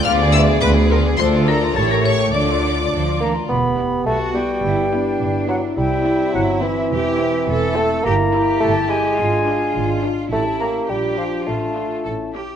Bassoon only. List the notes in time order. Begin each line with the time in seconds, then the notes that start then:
3.20 A#3
3.49 B3
4.06 A3
4.35 G3
5.48 F#3
5.77 G3
6.34 F#3
6.62 E3
7.76 A3
8.04 A#3
8.60 A3
8.89 G#3
10.32 A3
10.60 A#3
10.90 G3
11.18 F3
11.47 A3